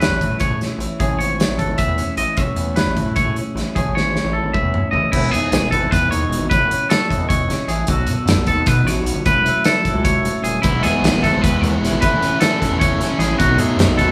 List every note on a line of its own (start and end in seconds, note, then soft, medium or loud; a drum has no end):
0.00 0.99 A2 medium
0.00 0.22 E3 medium
0.00 0.62 C#4 soft
0.00 0.41 G#4 medium
0.00 0.40 B4 medium
0.00 1.01 C#5 medium
0.00 snare medium
0.00 closed hi-hat medium
0.09 0.25 A1 medium
0.21 0.80 E3 medium
0.21 kick medium
0.21 closed hi-hat medium
0.30 0.38 A2 medium
0.40 1.01 G#4 medium
0.40 0.60 C#5 medium
0.40 kick loud
0.40 closed hi-hat medium
0.50 0.65 A2 medium
0.61 0.99 C#4 medium
0.61 snare soft
0.61 closed hi-hat soft
0.78 0.86 A1 medium
0.78 1.58 E3 medium
0.78 closed hi-hat medium
0.99 1.20 A1 medium
0.99 2.37 A2 medium
0.99 1.20 C#4 medium
0.99 1.19 G#4 medium
0.99 1.79 G#4 medium
0.99 1.38 C#5 medium
0.99 kick loud
0.99 closed hi-hat medium
1.18 1.41 G#1 medium
1.18 1.97 C#4 medium
1.18 1.58 C#5 medium
1.18 closed hi-hat medium
1.38 2.38 C#5 medium
1.38 snare loud
1.38 closed hi-hat medium
1.47 1.63 A1 medium
1.58 2.17 E3 medium
1.58 1.78 A4 medium
1.58 kick medium
1.58 closed hi-hat medium
1.67 1.75 G#1 medium
1.78 2.38 G#4 medium
1.78 2.17 E5 medium
1.78 kick loud
1.78 closed hi-hat medium
1.87 2.02 E2 medium
1.97 2.37 C#4 medium
1.97 closed hi-hat medium
2.17 2.25 A1 medium
2.17 2.98 E3 medium
2.17 2.37 D#5 medium
2.17 closed hi-hat medium
2.37 2.45 A1 medium
2.37 3.73 A2 medium
2.37 2.57 C#4 medium
2.37 3.17 G#4 medium
2.37 2.77 C#5 medium
2.37 2.77 E5 medium
2.37 kick medium
2.37 closed hi-hat medium
2.56 2.79 E2 medium
2.56 3.36 C#4 medium
2.56 closed hi-hat medium
2.76 3.16 B4 medium
2.76 3.73 C#5 medium
2.76 snare loud
2.76 closed hi-hat medium
2.87 3.02 A1 loud
2.96 3.54 E3 medium
2.96 kick medium
2.96 closed hi-hat medium
3.06 3.13 A2 medium
3.16 3.77 G#4 medium
3.16 3.36 C#5 medium
3.16 kick loud
3.16 closed hi-hat medium
3.25 3.40 A2 medium
3.36 3.73 C#4 medium
3.36 closed hi-hat medium
3.55 3.63 A1 medium
3.55 4.35 E3 medium
3.55 snare soft
3.55 closed hi-hat medium
3.75 3.96 A1 medium
3.75 5.11 A2 medium
3.75 3.95 C#4 medium
3.75 3.95 G#4 medium
3.75 4.55 G#4 medium
3.75 4.16 C#5 medium
3.75 kick medium
3.75 closed hi-hat medium
3.95 4.17 G#1 medium
3.95 4.74 C#4 soft
3.95 4.34 C#5 medium
3.95 snare soft
4.16 5.12 C#5 medium
4.16 snare soft
4.24 4.39 A1 medium
4.33 4.91 E3 medium
4.33 4.53 A4 medium
4.43 4.51 G#1 medium
4.53 5.12 G#4 medium
4.53 4.91 E5 medium
4.53 kick loud
4.53 mid tom medium
4.62 4.78 E2 medium
4.74 5.11 C#4 medium
4.74 mid tom medium
4.91 5.00 F#1 medium
4.91 5.10 E3 medium
4.91 5.12 D#5 medium
4.91 floor tom medium
5.12 5.32 E1 medium
5.12 6.49 E2 medium
5.12 5.31 E4 medium
5.12 5.51 G#4 medium
5.12 kick loud
5.12 crash loud
5.31 5.39 E2 medium
5.31 6.11 D#4 medium
5.31 5.70 G#4 medium
5.31 closed hi-hat medium
5.51 5.59 B1 medium
5.51 6.48 G#4 medium
5.51 snare loud
5.51 closed hi-hat medium
5.60 5.74 E1 medium
5.71 5.87 G#1 loud
5.71 7.08 E3 medium
5.71 5.91 A4 medium
5.71 6.49 B4 medium
5.71 kick medium
5.71 closed hi-hat medium
5.91 6.07 E2 loud
5.91 6.10 B4 medium
5.91 kick loud
5.91 snare soft
5.91 closed hi-hat loud
6.09 6.25 D#2 loud
6.09 6.49 D#4 medium
6.09 6.49 C#5 medium
6.09 closed hi-hat medium
6.29 6.37 E1 medium
6.29 6.51 B2 medium
6.29 closed hi-hat medium
6.39 6.47 G#1 medium
6.49 6.57 A1 loud
6.49 7.85 A2 medium
6.49 6.89 B4 medium
6.49 6.89 C#5 medium
6.49 kick loud
6.49 closed hi-hat medium
6.58 6.74 F#1 medium
6.69 7.48 C#4 medium
6.69 closed hi-hat medium
6.90 7.28 A4 medium
6.90 7.10 C#5 medium
6.90 snare loud
6.90 closed hi-hat medium
7.09 7.67 E3 medium
7.09 7.86 D#5 medium
7.09 kick medium
7.09 closed hi-hat medium
7.18 7.41 E2 medium
7.29 7.68 C#5 medium
7.29 kick loud
7.29 closed hi-hat medium
7.48 7.56 F#1 loud
7.48 7.86 C#4 medium
7.48 snare soft
7.48 closed hi-hat medium
7.68 7.83 A1 medium
7.68 7.86 E3 medium
7.68 7.88 G#4 medium
7.68 closed hi-hat medium
7.87 8.09 B1 loud
7.87 9.06 B2 medium
7.87 8.08 F#4 loud
7.87 8.29 A4 medium
7.87 kick loud
7.87 closed hi-hat medium
8.07 8.15 B2 medium
8.07 8.87 F#4 medium
8.07 closed hi-hat medium
8.26 8.34 F#2 medium
8.26 snare loud
8.26 closed hi-hat medium
8.30 8.48 A4 medium
8.36 8.48 B1 medium
8.46 8.62 D#2 loud
8.46 9.24 D#4 medium
8.46 8.67 A4 medium
8.46 9.24 B4 medium
8.46 kick medium
8.46 closed hi-hat medium
8.66 8.82 B2 loud
8.66 8.87 B4 medium
8.66 kick loud
8.66 snare soft
8.66 closed hi-hat loud
8.84 9.00 A1 loud
8.84 9.25 C#5 medium
8.84 closed hi-hat medium
8.88 9.25 F#4 medium
8.88 snare soft
9.03 9.12 B1 medium
9.03 closed hi-hat medium
9.07 9.27 B2 medium
9.13 9.22 G1 medium
9.26 9.33 F#1 loud
9.26 10.61 F#2 medium
9.26 9.67 E4 medium
9.26 9.65 B4 loud
9.26 kick loud
9.26 closed hi-hat medium
9.33 9.49 E1 medium
9.46 10.25 A3 medium
9.46 closed hi-hat medium
9.64 10.62 E4 medium
9.64 10.04 A4 medium
9.64 snare loud
9.64 closed hi-hat medium
9.85 10.62 F#3 medium
9.85 10.63 A4 medium
9.85 kick medium
9.85 closed hi-hat medium
9.93 10.17 C#2 medium
10.05 10.43 C#5 medium
10.05 kick loud
10.05 closed hi-hat loud
10.22 10.31 E1 medium
10.22 10.65 A3 medium
10.22 closed hi-hat medium
10.43 10.58 D#1 medium
10.43 10.62 C#3 medium
10.43 10.61 G#4 medium
10.43 closed hi-hat medium
10.62 10.84 E1 loud
10.62 12.01 E2 medium
10.62 11.01 E3 medium
10.62 10.85 G#3 medium
10.62 10.84 B3 medium
10.62 11.01 D#4 medium
10.62 10.83 E4 medium
10.62 10.82 E4 medium
10.62 kick loud
10.62 closed hi-hat medium
10.82 10.90 E2 medium
10.82 10.93 A3 medium
10.82 11.04 B3 medium
10.82 11.05 E4 medium
10.82 11.23 G#4 medium
10.82 snare soft
10.82 closed hi-hat medium
10.86 11.02 G#3 medium
10.93 11.62 B3 soft
11.01 11.10 B1 loud
11.01 11.24 E3 medium
11.01 11.24 G#3 medium
11.01 11.23 B3 medium
11.01 11.12 C#4 medium
11.01 11.21 E4 medium
11.01 snare loud
11.01 closed hi-hat medium
11.12 11.26 E1 medium
11.22 11.39 G#1 loud
11.22 12.57 E3 medium
11.22 11.42 E3 medium
11.22 11.43 G#3 medium
11.22 11.45 B3 medium
11.22 11.45 E4 medium
11.22 12.00 G#4 medium
11.22 11.42 A4 medium
11.22 kick medium
11.22 snare soft
11.22 closed hi-hat medium
11.42 11.58 E2 loud
11.42 11.80 E3 medium
11.42 11.65 G#3 medium
11.42 11.61 B4 medium
11.42 kick loud
11.42 closed hi-hat loud
11.46 11.63 B3 medium
11.46 11.62 E4 medium
11.61 11.77 D#2 loud
11.61 12.00 B3 medium
11.61 11.82 B3 medium
11.61 11.83 E4 medium
11.61 12.01 C#5 medium
11.61 closed hi-hat medium
11.66 11.81 G#3 medium
11.81 11.90 E1 medium
11.81 12.02 B2 medium
11.81 12.00 E3 medium
11.81 12.01 G#3 loud
11.81 12.02 B3 medium
11.81 12.02 E4 loud
11.81 closed hi-hat medium
11.86 snare soft
11.90 11.99 G#1 medium
12.00 12.10 A1 loud
12.00 12.41 A2 medium
12.00 13.38 A2 medium
12.00 12.38 E3 medium
12.00 12.23 A3 loud
12.00 12.20 C#4 medium
12.00 12.40 E4 medium
12.00 12.19 E4 loud
12.00 12.40 B4 medium
12.00 kick loud
12.00 closed hi-hat loud
12.10 12.26 F#1 medium
12.20 12.40 A3 medium
12.20 12.39 C#4 medium
12.20 12.40 C#4 medium
12.20 12.40 E4 medium
12.20 closed hi-hat medium
12.39 12.62 E3 medium
12.39 12.63 A3 medium
12.39 12.49 C#4 medium
12.39 12.61 C#4 medium
12.39 12.60 E4 medium
12.39 12.79 A4 medium
12.39 snare loud
12.39 closed hi-hat loud
12.49 13.37 E4 medium
12.59 13.17 E3 medium
12.59 12.80 C#4 medium
12.59 12.81 E4 medium
12.59 13.40 A4 medium
12.59 kick medium
12.59 closed hi-hat medium
12.63 13.02 A2 medium
12.63 12.77 E3 medium
12.63 12.79 A3 medium
12.63 snare soft
12.70 12.93 E2 medium
12.78 13.18 E3 medium
12.78 13.01 A3 medium
12.78 12.99 C#4 medium
12.78 12.97 E4 medium
12.78 13.20 C#5 medium
12.78 kick loud
12.78 closed hi-hat loud
12.98 13.07 F#1 medium
12.98 13.19 A3 medium
12.98 13.37 C#4 medium
12.98 13.19 C#4 medium
12.98 13.20 E4 medium
12.98 snare soft
12.98 closed hi-hat medium
13.18 13.34 A1 medium
13.18 13.38 A2 medium
13.18 13.36 E3 medium
13.18 13.38 E3 medium
13.18 13.40 A3 medium
13.18 13.39 C#4 loud
13.18 13.39 E4 loud
13.18 13.38 G#4 medium
13.18 snare soft
13.18 closed hi-hat medium
13.37 13.59 B1 medium
13.37 14.12 B2 medium
13.37 13.75 B2 medium
13.37 13.61 F#3 medium
13.37 13.76 D#4 medium
13.37 13.59 F#4 medium
13.37 kick loud
13.37 closed hi-hat medium
13.41 13.59 A3 loud
13.41 13.57 D#4 medium
13.57 13.66 B2 medium
13.57 14.12 A3 medium
13.57 13.79 A3 medium
13.57 13.79 D#4 medium
13.57 13.99 G#4 medium
13.57 closed hi-hat medium
13.61 13.77 F#3 medium
13.76 13.85 F#2 loud
13.76 14.00 B2 medium
13.76 14.00 F#3 medium
13.76 13.98 A3 medium
13.76 14.12 D#4 medium
13.76 13.96 D#4 medium
13.76 snare loud
13.76 closed hi-hat medium
13.87 14.00 B1 medium
13.97 14.12 D#2 loud
13.97 14.12 F#3 medium
13.97 14.12 A3 medium
13.97 14.12 D#4 loud
13.97 14.12 A4 medium
13.97 14.12 B4 medium
13.97 kick medium
13.97 closed hi-hat medium
14.01 14.12 B2 medium